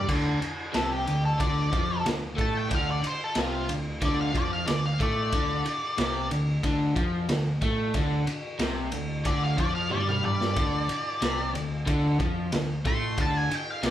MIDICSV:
0, 0, Header, 1, 7, 480
1, 0, Start_track
1, 0, Key_signature, -1, "minor"
1, 0, Tempo, 655022
1, 62, Time_signature, 4, 2, 24, 8
1, 10189, End_track
2, 0, Start_track
2, 0, Title_t, "Lead electric guitar"
2, 0, Program_c, 0, 29
2, 551, Note_on_c, 0, 69, 88
2, 663, Note_off_c, 0, 69, 0
2, 674, Note_on_c, 0, 67, 81
2, 901, Note_off_c, 0, 67, 0
2, 919, Note_on_c, 0, 69, 79
2, 1027, Note_off_c, 0, 69, 0
2, 1027, Note_on_c, 0, 74, 94
2, 1491, Note_off_c, 0, 74, 0
2, 1766, Note_on_c, 0, 81, 86
2, 1884, Note_off_c, 0, 81, 0
2, 1884, Note_on_c, 0, 79, 77
2, 1990, Note_off_c, 0, 79, 0
2, 2013, Note_on_c, 0, 77, 87
2, 2115, Note_off_c, 0, 77, 0
2, 2131, Note_on_c, 0, 74, 91
2, 2234, Note_off_c, 0, 74, 0
2, 2249, Note_on_c, 0, 72, 82
2, 2374, Note_off_c, 0, 72, 0
2, 2374, Note_on_c, 0, 69, 83
2, 2476, Note_off_c, 0, 69, 0
2, 2495, Note_on_c, 0, 65, 93
2, 2713, Note_off_c, 0, 65, 0
2, 2969, Note_on_c, 0, 74, 83
2, 3074, Note_off_c, 0, 74, 0
2, 3085, Note_on_c, 0, 77, 82
2, 3192, Note_off_c, 0, 77, 0
2, 3205, Note_on_c, 0, 74, 92
2, 3312, Note_off_c, 0, 74, 0
2, 3320, Note_on_c, 0, 77, 78
2, 3423, Note_off_c, 0, 77, 0
2, 3426, Note_on_c, 0, 74, 88
2, 3559, Note_off_c, 0, 74, 0
2, 3559, Note_on_c, 0, 77, 82
2, 3669, Note_off_c, 0, 77, 0
2, 3683, Note_on_c, 0, 74, 90
2, 4606, Note_off_c, 0, 74, 0
2, 6789, Note_on_c, 0, 74, 91
2, 6915, Note_off_c, 0, 74, 0
2, 6915, Note_on_c, 0, 77, 77
2, 7026, Note_off_c, 0, 77, 0
2, 7037, Note_on_c, 0, 74, 88
2, 7141, Note_off_c, 0, 74, 0
2, 7144, Note_on_c, 0, 77, 84
2, 7261, Note_off_c, 0, 77, 0
2, 7267, Note_on_c, 0, 74, 101
2, 7382, Note_off_c, 0, 74, 0
2, 7392, Note_on_c, 0, 77, 79
2, 7511, Note_off_c, 0, 77, 0
2, 7511, Note_on_c, 0, 74, 88
2, 8438, Note_off_c, 0, 74, 0
2, 9432, Note_on_c, 0, 84, 106
2, 9659, Note_off_c, 0, 84, 0
2, 9682, Note_on_c, 0, 81, 94
2, 9798, Note_off_c, 0, 81, 0
2, 9798, Note_on_c, 0, 80, 95
2, 9931, Note_off_c, 0, 80, 0
2, 9931, Note_on_c, 0, 79, 90
2, 10042, Note_off_c, 0, 79, 0
2, 10042, Note_on_c, 0, 77, 83
2, 10156, Note_off_c, 0, 77, 0
2, 10156, Note_on_c, 0, 74, 91
2, 10189, Note_off_c, 0, 74, 0
2, 10189, End_track
3, 0, Start_track
3, 0, Title_t, "Overdriven electric guitar"
3, 0, Program_c, 1, 29
3, 61, Note_on_c, 1, 50, 103
3, 294, Note_off_c, 1, 50, 0
3, 536, Note_on_c, 1, 48, 101
3, 772, Note_off_c, 1, 48, 0
3, 783, Note_on_c, 1, 50, 70
3, 975, Note_off_c, 1, 50, 0
3, 1019, Note_on_c, 1, 50, 104
3, 1254, Note_off_c, 1, 50, 0
3, 1260, Note_on_c, 1, 53, 94
3, 1494, Note_off_c, 1, 53, 0
3, 1503, Note_on_c, 1, 50, 61
3, 1695, Note_off_c, 1, 50, 0
3, 1734, Note_on_c, 1, 57, 90
3, 1970, Note_on_c, 1, 50, 104
3, 1971, Note_off_c, 1, 57, 0
3, 2210, Note_off_c, 1, 50, 0
3, 2470, Note_on_c, 1, 48, 99
3, 2700, Note_off_c, 1, 48, 0
3, 2709, Note_on_c, 1, 50, 73
3, 2899, Note_off_c, 1, 50, 0
3, 2946, Note_on_c, 1, 50, 99
3, 3176, Note_off_c, 1, 50, 0
3, 3179, Note_on_c, 1, 53, 92
3, 3415, Note_off_c, 1, 53, 0
3, 3424, Note_on_c, 1, 50, 64
3, 3617, Note_off_c, 1, 50, 0
3, 3665, Note_on_c, 1, 57, 94
3, 3898, Note_off_c, 1, 57, 0
3, 3905, Note_on_c, 1, 50, 106
3, 4136, Note_off_c, 1, 50, 0
3, 4383, Note_on_c, 1, 48, 97
3, 4617, Note_off_c, 1, 48, 0
3, 4624, Note_on_c, 1, 50, 67
3, 4817, Note_off_c, 1, 50, 0
3, 4867, Note_on_c, 1, 50, 100
3, 5098, Note_off_c, 1, 50, 0
3, 5101, Note_on_c, 1, 53, 96
3, 5336, Note_off_c, 1, 53, 0
3, 5345, Note_on_c, 1, 50, 71
3, 5538, Note_off_c, 1, 50, 0
3, 5585, Note_on_c, 1, 57, 96
3, 5818, Note_off_c, 1, 57, 0
3, 5823, Note_on_c, 1, 50, 107
3, 6053, Note_off_c, 1, 50, 0
3, 6301, Note_on_c, 1, 48, 99
3, 6536, Note_off_c, 1, 48, 0
3, 6542, Note_on_c, 1, 50, 66
3, 6735, Note_off_c, 1, 50, 0
3, 6780, Note_on_c, 1, 50, 102
3, 7014, Note_off_c, 1, 50, 0
3, 7017, Note_on_c, 1, 53, 94
3, 7254, Note_off_c, 1, 53, 0
3, 7258, Note_on_c, 1, 55, 90
3, 7733, Note_off_c, 1, 55, 0
3, 7740, Note_on_c, 1, 50, 103
3, 7975, Note_off_c, 1, 50, 0
3, 8223, Note_on_c, 1, 48, 93
3, 8455, Note_off_c, 1, 48, 0
3, 8458, Note_on_c, 1, 50, 67
3, 8652, Note_off_c, 1, 50, 0
3, 8694, Note_on_c, 1, 50, 103
3, 8931, Note_off_c, 1, 50, 0
3, 8940, Note_on_c, 1, 53, 84
3, 9173, Note_off_c, 1, 53, 0
3, 9180, Note_on_c, 1, 50, 68
3, 9372, Note_off_c, 1, 50, 0
3, 9421, Note_on_c, 1, 57, 101
3, 9653, Note_off_c, 1, 57, 0
3, 9660, Note_on_c, 1, 50, 103
3, 9892, Note_off_c, 1, 50, 0
3, 10134, Note_on_c, 1, 48, 100
3, 10189, Note_off_c, 1, 48, 0
3, 10189, End_track
4, 0, Start_track
4, 0, Title_t, "Picked electric bass"
4, 0, Program_c, 2, 34
4, 64, Note_on_c, 2, 38, 84
4, 286, Note_off_c, 2, 38, 0
4, 552, Note_on_c, 2, 36, 89
4, 771, Note_off_c, 2, 36, 0
4, 795, Note_on_c, 2, 38, 72
4, 1013, Note_off_c, 2, 38, 0
4, 1027, Note_on_c, 2, 38, 84
4, 1248, Note_off_c, 2, 38, 0
4, 1265, Note_on_c, 2, 41, 91
4, 1487, Note_off_c, 2, 41, 0
4, 1517, Note_on_c, 2, 38, 73
4, 1734, Note_off_c, 2, 38, 0
4, 1747, Note_on_c, 2, 45, 82
4, 1969, Note_off_c, 2, 45, 0
4, 1984, Note_on_c, 2, 38, 85
4, 2207, Note_off_c, 2, 38, 0
4, 2464, Note_on_c, 2, 36, 89
4, 2687, Note_off_c, 2, 36, 0
4, 2703, Note_on_c, 2, 38, 73
4, 2927, Note_off_c, 2, 38, 0
4, 2945, Note_on_c, 2, 38, 89
4, 3168, Note_off_c, 2, 38, 0
4, 3187, Note_on_c, 2, 41, 80
4, 3409, Note_off_c, 2, 41, 0
4, 3430, Note_on_c, 2, 38, 69
4, 3651, Note_off_c, 2, 38, 0
4, 3665, Note_on_c, 2, 45, 83
4, 3889, Note_off_c, 2, 45, 0
4, 3905, Note_on_c, 2, 38, 78
4, 4129, Note_off_c, 2, 38, 0
4, 4387, Note_on_c, 2, 36, 92
4, 4610, Note_off_c, 2, 36, 0
4, 4626, Note_on_c, 2, 38, 74
4, 4849, Note_off_c, 2, 38, 0
4, 4859, Note_on_c, 2, 38, 91
4, 5085, Note_off_c, 2, 38, 0
4, 5102, Note_on_c, 2, 41, 89
4, 5327, Note_off_c, 2, 41, 0
4, 5348, Note_on_c, 2, 38, 69
4, 5570, Note_off_c, 2, 38, 0
4, 5584, Note_on_c, 2, 45, 86
4, 5808, Note_off_c, 2, 45, 0
4, 5819, Note_on_c, 2, 38, 86
4, 6045, Note_off_c, 2, 38, 0
4, 6297, Note_on_c, 2, 36, 90
4, 6524, Note_off_c, 2, 36, 0
4, 6537, Note_on_c, 2, 38, 72
4, 6764, Note_off_c, 2, 38, 0
4, 6779, Note_on_c, 2, 38, 90
4, 7005, Note_off_c, 2, 38, 0
4, 7023, Note_on_c, 2, 41, 90
4, 7247, Note_off_c, 2, 41, 0
4, 7266, Note_on_c, 2, 43, 88
4, 7715, Note_off_c, 2, 43, 0
4, 7740, Note_on_c, 2, 38, 82
4, 7965, Note_off_c, 2, 38, 0
4, 8225, Note_on_c, 2, 36, 92
4, 8447, Note_off_c, 2, 36, 0
4, 8460, Note_on_c, 2, 38, 72
4, 8684, Note_off_c, 2, 38, 0
4, 8701, Note_on_c, 2, 38, 83
4, 8924, Note_off_c, 2, 38, 0
4, 8939, Note_on_c, 2, 41, 89
4, 9163, Note_off_c, 2, 41, 0
4, 9183, Note_on_c, 2, 38, 71
4, 9405, Note_off_c, 2, 38, 0
4, 9418, Note_on_c, 2, 45, 85
4, 9642, Note_off_c, 2, 45, 0
4, 9657, Note_on_c, 2, 38, 88
4, 9881, Note_off_c, 2, 38, 0
4, 10138, Note_on_c, 2, 36, 94
4, 10189, Note_off_c, 2, 36, 0
4, 10189, End_track
5, 0, Start_track
5, 0, Title_t, "Muted overdriven electric guitar strokes"
5, 302, Note_on_c, 9, 29, 53
5, 376, Note_off_c, 9, 29, 0
5, 2218, Note_on_c, 9, 29, 58
5, 2291, Note_off_c, 9, 29, 0
5, 4144, Note_on_c, 9, 29, 53
5, 4218, Note_off_c, 9, 29, 0
5, 6062, Note_on_c, 9, 29, 57
5, 6135, Note_off_c, 9, 29, 0
5, 7982, Note_on_c, 9, 29, 54
5, 8055, Note_off_c, 9, 29, 0
5, 9901, Note_on_c, 9, 29, 55
5, 9974, Note_off_c, 9, 29, 0
5, 10189, End_track
6, 0, Start_track
6, 0, Title_t, "Muted picked electric bass strokes"
6, 315, Note_on_c, 9, 29, 39
6, 388, Note_off_c, 9, 29, 0
6, 2230, Note_on_c, 9, 29, 40
6, 2303, Note_off_c, 9, 29, 0
6, 4147, Note_on_c, 9, 29, 39
6, 4220, Note_off_c, 9, 29, 0
6, 6060, Note_on_c, 9, 29, 41
6, 6134, Note_off_c, 9, 29, 0
6, 7982, Note_on_c, 9, 29, 40
6, 8055, Note_off_c, 9, 29, 0
6, 9902, Note_on_c, 9, 29, 40
6, 9975, Note_off_c, 9, 29, 0
6, 10189, End_track
7, 0, Start_track
7, 0, Title_t, "Drums"
7, 63, Note_on_c, 9, 36, 100
7, 64, Note_on_c, 9, 49, 92
7, 137, Note_off_c, 9, 36, 0
7, 137, Note_off_c, 9, 49, 0
7, 308, Note_on_c, 9, 51, 54
7, 381, Note_off_c, 9, 51, 0
7, 543, Note_on_c, 9, 51, 73
7, 546, Note_on_c, 9, 38, 97
7, 616, Note_off_c, 9, 51, 0
7, 620, Note_off_c, 9, 38, 0
7, 787, Note_on_c, 9, 51, 62
7, 860, Note_off_c, 9, 51, 0
7, 1026, Note_on_c, 9, 36, 101
7, 1027, Note_on_c, 9, 51, 78
7, 1099, Note_off_c, 9, 36, 0
7, 1100, Note_off_c, 9, 51, 0
7, 1265, Note_on_c, 9, 51, 60
7, 1266, Note_on_c, 9, 36, 98
7, 1339, Note_off_c, 9, 36, 0
7, 1339, Note_off_c, 9, 51, 0
7, 1509, Note_on_c, 9, 51, 82
7, 1512, Note_on_c, 9, 38, 107
7, 1582, Note_off_c, 9, 51, 0
7, 1586, Note_off_c, 9, 38, 0
7, 1746, Note_on_c, 9, 36, 98
7, 1749, Note_on_c, 9, 51, 61
7, 1820, Note_off_c, 9, 36, 0
7, 1823, Note_off_c, 9, 51, 0
7, 1984, Note_on_c, 9, 51, 83
7, 1987, Note_on_c, 9, 36, 91
7, 2057, Note_off_c, 9, 51, 0
7, 2060, Note_off_c, 9, 36, 0
7, 2225, Note_on_c, 9, 51, 60
7, 2299, Note_off_c, 9, 51, 0
7, 2455, Note_on_c, 9, 51, 81
7, 2459, Note_on_c, 9, 38, 104
7, 2528, Note_off_c, 9, 51, 0
7, 2532, Note_off_c, 9, 38, 0
7, 2704, Note_on_c, 9, 51, 67
7, 2777, Note_off_c, 9, 51, 0
7, 2943, Note_on_c, 9, 51, 82
7, 2945, Note_on_c, 9, 36, 100
7, 3016, Note_off_c, 9, 51, 0
7, 3018, Note_off_c, 9, 36, 0
7, 3186, Note_on_c, 9, 36, 85
7, 3189, Note_on_c, 9, 51, 59
7, 3259, Note_off_c, 9, 36, 0
7, 3262, Note_off_c, 9, 51, 0
7, 3426, Note_on_c, 9, 51, 92
7, 3429, Note_on_c, 9, 38, 102
7, 3499, Note_off_c, 9, 51, 0
7, 3503, Note_off_c, 9, 38, 0
7, 3665, Note_on_c, 9, 36, 98
7, 3669, Note_on_c, 9, 51, 63
7, 3738, Note_off_c, 9, 36, 0
7, 3742, Note_off_c, 9, 51, 0
7, 3902, Note_on_c, 9, 51, 84
7, 3903, Note_on_c, 9, 36, 99
7, 3975, Note_off_c, 9, 51, 0
7, 3976, Note_off_c, 9, 36, 0
7, 4144, Note_on_c, 9, 51, 58
7, 4217, Note_off_c, 9, 51, 0
7, 4381, Note_on_c, 9, 51, 86
7, 4385, Note_on_c, 9, 38, 110
7, 4454, Note_off_c, 9, 51, 0
7, 4458, Note_off_c, 9, 38, 0
7, 4624, Note_on_c, 9, 51, 69
7, 4698, Note_off_c, 9, 51, 0
7, 4862, Note_on_c, 9, 36, 91
7, 4863, Note_on_c, 9, 51, 74
7, 4935, Note_off_c, 9, 36, 0
7, 4936, Note_off_c, 9, 51, 0
7, 5102, Note_on_c, 9, 36, 95
7, 5104, Note_on_c, 9, 51, 56
7, 5175, Note_off_c, 9, 36, 0
7, 5177, Note_off_c, 9, 51, 0
7, 5341, Note_on_c, 9, 51, 85
7, 5344, Note_on_c, 9, 38, 105
7, 5414, Note_off_c, 9, 51, 0
7, 5418, Note_off_c, 9, 38, 0
7, 5581, Note_on_c, 9, 51, 63
7, 5582, Note_on_c, 9, 36, 94
7, 5654, Note_off_c, 9, 51, 0
7, 5656, Note_off_c, 9, 36, 0
7, 5818, Note_on_c, 9, 51, 80
7, 5821, Note_on_c, 9, 36, 96
7, 5891, Note_off_c, 9, 51, 0
7, 5895, Note_off_c, 9, 36, 0
7, 6061, Note_on_c, 9, 51, 61
7, 6134, Note_off_c, 9, 51, 0
7, 6297, Note_on_c, 9, 51, 83
7, 6301, Note_on_c, 9, 38, 105
7, 6370, Note_off_c, 9, 51, 0
7, 6374, Note_off_c, 9, 38, 0
7, 6534, Note_on_c, 9, 51, 73
7, 6608, Note_off_c, 9, 51, 0
7, 6778, Note_on_c, 9, 51, 82
7, 6781, Note_on_c, 9, 36, 90
7, 6851, Note_off_c, 9, 51, 0
7, 6854, Note_off_c, 9, 36, 0
7, 7021, Note_on_c, 9, 36, 86
7, 7021, Note_on_c, 9, 51, 61
7, 7094, Note_off_c, 9, 36, 0
7, 7094, Note_off_c, 9, 51, 0
7, 7264, Note_on_c, 9, 48, 58
7, 7337, Note_off_c, 9, 48, 0
7, 7387, Note_on_c, 9, 47, 55
7, 7460, Note_off_c, 9, 47, 0
7, 7502, Note_on_c, 9, 45, 80
7, 7575, Note_off_c, 9, 45, 0
7, 7628, Note_on_c, 9, 38, 75
7, 7701, Note_off_c, 9, 38, 0
7, 7741, Note_on_c, 9, 51, 86
7, 7742, Note_on_c, 9, 36, 94
7, 7814, Note_off_c, 9, 51, 0
7, 7815, Note_off_c, 9, 36, 0
7, 7980, Note_on_c, 9, 51, 67
7, 8054, Note_off_c, 9, 51, 0
7, 8221, Note_on_c, 9, 51, 87
7, 8224, Note_on_c, 9, 38, 102
7, 8294, Note_off_c, 9, 51, 0
7, 8298, Note_off_c, 9, 38, 0
7, 8464, Note_on_c, 9, 51, 67
7, 8538, Note_off_c, 9, 51, 0
7, 8701, Note_on_c, 9, 36, 94
7, 8701, Note_on_c, 9, 51, 86
7, 8774, Note_off_c, 9, 36, 0
7, 8774, Note_off_c, 9, 51, 0
7, 8938, Note_on_c, 9, 51, 60
7, 8939, Note_on_c, 9, 36, 95
7, 9011, Note_off_c, 9, 51, 0
7, 9013, Note_off_c, 9, 36, 0
7, 9176, Note_on_c, 9, 51, 84
7, 9180, Note_on_c, 9, 38, 105
7, 9250, Note_off_c, 9, 51, 0
7, 9253, Note_off_c, 9, 38, 0
7, 9418, Note_on_c, 9, 36, 104
7, 9418, Note_on_c, 9, 51, 64
7, 9491, Note_off_c, 9, 36, 0
7, 9491, Note_off_c, 9, 51, 0
7, 9656, Note_on_c, 9, 51, 80
7, 9657, Note_on_c, 9, 36, 98
7, 9729, Note_off_c, 9, 51, 0
7, 9730, Note_off_c, 9, 36, 0
7, 9902, Note_on_c, 9, 51, 62
7, 9976, Note_off_c, 9, 51, 0
7, 10136, Note_on_c, 9, 51, 80
7, 10140, Note_on_c, 9, 38, 101
7, 10189, Note_off_c, 9, 38, 0
7, 10189, Note_off_c, 9, 51, 0
7, 10189, End_track
0, 0, End_of_file